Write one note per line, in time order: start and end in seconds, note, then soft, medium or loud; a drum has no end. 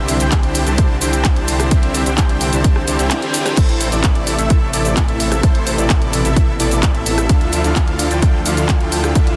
0.00 0.18 C2 loud
0.00 3.53 D3 medium
0.00 3.54 C4 medium
0.00 0.17 D4 medium
0.00 0.17 E4 medium
0.00 0.17 G4 medium
0.00 0.17 C5 medium
0.00 0.17 E5 medium
0.08 open hi-hat loud
0.08 shaker medium
0.20 0.64 C2 loud
0.20 0.64 D4 medium
0.20 0.64 E4 medium
0.20 0.64 G4 medium
0.20 0.64 C5 medium
0.20 0.64 G5 medium
0.20 closed hi-hat soft
0.20 shaker soft
0.32 kick loud
0.32 clap loud
0.32 closed hi-hat medium
0.32 shaker soft
0.43 closed hi-hat soft
0.55 open hi-hat medium
0.55 shaker medium
0.67 0.99 C2 loud
0.67 0.95 D4 medium
0.67 0.95 E4 medium
0.67 0.95 G4 medium
0.67 0.95 C5 medium
0.67 0.95 A5 medium
0.67 closed hi-hat soft
0.67 shaker soft
0.78 kick loud
0.78 closed hi-hat loud
0.78 shaker soft
1.01 1.34 C2 loud
1.01 1.34 D4 loud
1.01 1.34 E4 medium
1.01 1.34 G4 medium
1.01 1.34 C5 medium
1.01 1.34 G5 loud
1.01 open hi-hat loud
1.01 shaker medium
1.13 closed hi-hat soft
1.13 shaker soft
1.25 kick loud
1.25 clap loud
1.25 closed hi-hat loud
1.25 shaker soft
1.36 1.69 C2 loud
1.36 1.69 D4 medium
1.36 1.69 E4 medium
1.36 1.69 G4 medium
1.36 1.69 C5 medium
1.36 1.69 A5 medium
1.36 closed hi-hat soft
1.48 open hi-hat medium
1.48 shaker medium
1.60 cross-stick medium
1.60 closed hi-hat soft
1.60 shaker soft
1.71 2.04 C2 loud
1.71 2.04 D4 medium
1.71 2.04 E4 medium
1.71 2.04 G4 medium
1.71 2.04 C5 medium
1.71 2.04 E5 loud
1.71 kick loud
1.71 closed hi-hat loud
1.71 shaker soft
1.83 closed hi-hat soft
1.94 open hi-hat loud
1.94 shaker medium
2.06 2.50 C2 loud
2.06 2.50 D4 medium
2.06 2.50 E4 medium
2.06 2.50 G4 medium
2.06 2.50 C5 medium
2.06 2.50 G5 medium
2.06 closed hi-hat soft
2.06 shaker soft
2.18 kick loud
2.18 clap loud
2.18 closed hi-hat medium
2.18 shaker soft
2.29 closed hi-hat soft
2.41 open hi-hat medium
2.41 shaker medium
2.53 2.85 C2 loud
2.53 2.81 D4 medium
2.53 2.81 E4 medium
2.53 2.81 G4 medium
2.53 2.81 C5 medium
2.53 2.81 A5 medium
2.53 closed hi-hat soft
2.53 shaker soft
2.64 kick loud
2.64 closed hi-hat loud
2.64 reverse cymbal medium
2.64 shaker soft
2.76 cross-stick medium
2.88 2.97 C2 loud
2.88 2.97 D4 medium
2.88 2.97 E4 medium
2.88 2.97 G4 medium
2.88 2.97 C5 medium
2.88 2.97 A5 medium
2.88 open hi-hat loud
2.88 shaker medium
2.99 3.11 C2 medium
2.99 3.20 D4 loud
2.99 3.20 E4 medium
2.99 3.20 G4 medium
2.99 3.20 C5 medium
2.99 3.20 G5 loud
2.99 closed hi-hat soft
2.99 shaker soft
3.11 clap loud
3.11 closed hi-hat loud
3.11 shaker soft
3.22 3.55 D4 medium
3.22 3.55 E4 medium
3.22 3.55 G4 medium
3.22 3.55 C5 medium
3.22 3.55 G5 medium
3.22 closed hi-hat soft
3.34 open hi-hat medium
3.34 shaker medium
3.46 cross-stick medium
3.46 closed hi-hat soft
3.46 shaker soft
3.57 3.90 A1 loud
3.57 7.26 C3 medium
3.57 5.42 A3 medium
3.57 3.89 E4 medium
3.57 3.89 A4 medium
3.57 3.89 C5 medium
3.57 kick loud
3.57 closed hi-hat loud
3.57 crash medium
3.57 shaker soft
3.69 closed hi-hat soft
3.81 open hi-hat loud
3.81 shaker medium
3.92 4.36 A1 loud
3.92 4.36 E4 medium
3.92 4.36 A4 medium
3.92 4.36 D5 medium
3.92 closed hi-hat soft
3.92 shaker soft
4.04 kick loud
4.04 clap loud
4.04 closed hi-hat medium
4.04 shaker soft
4.15 closed hi-hat soft
4.27 open hi-hat medium
4.27 shaker medium
4.39 4.71 A1 loud
4.39 4.67 E4 medium
4.39 4.67 A4 medium
4.39 4.67 E5 medium
4.39 closed hi-hat soft
4.39 shaker soft
4.50 kick loud
4.50 closed hi-hat loud
4.50 shaker soft
4.73 5.06 A1 loud
4.73 5.06 E4 loud
4.73 5.06 A4 medium
4.73 5.06 D5 loud
4.73 open hi-hat loud
4.73 shaker medium
4.85 closed hi-hat soft
4.85 shaker soft
4.97 kick loud
4.97 clap loud
4.97 closed hi-hat loud
4.97 shaker soft
5.08 5.41 A1 loud
5.08 5.41 E4 medium
5.08 5.41 A4 medium
5.08 5.41 E5 medium
5.08 closed hi-hat soft
5.20 open hi-hat loud
5.20 shaker medium
5.32 cross-stick medium
5.32 closed hi-hat soft
5.32 shaker soft
5.43 5.76 A1 medium
5.43 7.28 B2 medium
5.43 5.75 E4 medium
5.43 5.75 A4 medium
5.43 5.75 C5 loud
5.43 kick loud
5.43 closed hi-hat loud
5.43 shaker soft
5.55 closed hi-hat soft
5.67 open hi-hat loud
5.67 shaker medium
5.78 6.22 A1 loud
5.78 6.22 E4 medium
5.78 6.22 A4 medium
5.78 6.22 D5 medium
5.78 closed hi-hat soft
5.78 shaker soft
5.90 kick loud
5.90 clap loud
5.90 closed hi-hat medium
5.90 shaker soft
6.02 closed hi-hat soft
6.13 open hi-hat medium
6.13 shaker medium
6.25 6.57 A1 loud
6.25 6.53 E4 medium
6.25 6.53 A4 medium
6.25 6.53 E5 medium
6.25 closed hi-hat soft
6.25 shaker soft
6.36 kick loud
6.36 closed hi-hat medium
6.36 shaker soft
6.60 6.92 A1 loud
6.60 6.92 E4 loud
6.60 6.92 A4 medium
6.60 6.92 D5 loud
6.60 open hi-hat loud
6.60 shaker medium
6.71 closed hi-hat soft
6.71 shaker soft
6.83 kick loud
6.83 clap loud
6.83 closed hi-hat medium
6.83 shaker soft
6.94 7.27 A1 loud
6.94 7.27 E4 medium
6.94 7.27 A4 medium
6.94 7.27 E5 medium
6.94 closed hi-hat soft
7.06 open hi-hat loud
7.06 shaker medium
7.18 cross-stick medium
7.18 closed hi-hat soft
7.18 shaker soft
7.29 7.62 D2 medium
7.29 9.36 D3 medium
7.29 9.36 F3 medium
7.29 7.62 D4 medium
7.29 7.62 E4 medium
7.29 7.62 F4 medium
7.29 7.62 A4 medium
7.29 7.62 E5 loud
7.29 kick loud
7.29 closed hi-hat loud
7.29 shaker soft
7.41 closed hi-hat soft
7.53 open hi-hat loud
7.53 shaker medium
7.64 8.09 D2 loud
7.64 8.08 D4 medium
7.64 8.08 E4 medium
7.64 8.08 F4 medium
7.64 8.08 A4 medium
7.64 8.08 F5 medium
7.64 closed hi-hat soft
7.64 shaker soft
7.76 kick loud
7.76 clap loud
7.76 closed hi-hat medium
7.76 shaker soft
7.88 closed hi-hat soft
7.99 open hi-hat loud
7.99 shaker medium
8.11 8.43 D2 loud
8.11 8.39 D4 medium
8.11 8.39 E4 medium
8.11 8.39 F4 medium
8.11 8.39 A4 medium
8.11 8.39 G5 medium
8.11 closed hi-hat soft
8.11 shaker soft
8.22 kick loud
8.22 closed hi-hat medium
8.22 shaker soft
8.46 8.78 D2 medium
8.46 8.78 D4 loud
8.46 8.78 E4 medium
8.46 8.78 F4 medium
8.46 8.78 A4 medium
8.46 8.78 F5 loud
8.46 open hi-hat loud
8.46 shaker medium
8.57 closed hi-hat soft
8.57 shaker soft
8.69 kick loud
8.69 clap loud
8.69 closed hi-hat medium
8.69 shaker soft
8.81 9.13 D2 loud
8.81 9.13 D4 medium
8.81 9.13 E4 medium
8.81 9.13 F4 medium
8.81 9.13 A4 medium
8.81 9.13 G5 medium
8.81 closed hi-hat soft
8.92 open hi-hat loud
8.92 shaker medium
9.04 cross-stick medium
9.04 closed hi-hat soft
9.04 shaker soft
9.15 9.36 D2 loud
9.15 9.36 D4 medium
9.15 9.36 E4 medium
9.15 9.36 F4 medium
9.15 9.36 A4 medium
9.15 9.36 E5 medium
9.15 kick loud
9.15 closed hi-hat medium
9.15 shaker soft
9.27 closed hi-hat soft